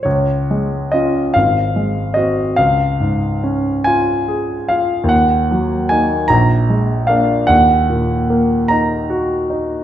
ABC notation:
X:1
M:6/8
L:1/8
Q:3/8=49
K:Db
V:1 name="Grand piano"
d2 e f2 e | f3 a2 f | g2 a b2 f | g3 b2 z |]
V:2 name="Grand piano"
D,, A, [DF] A,,, A, [CG] | D,, A,, D F A F | E,, G, [B,E] B,,, A, [B,=D] | E,, B,, B, E G E |]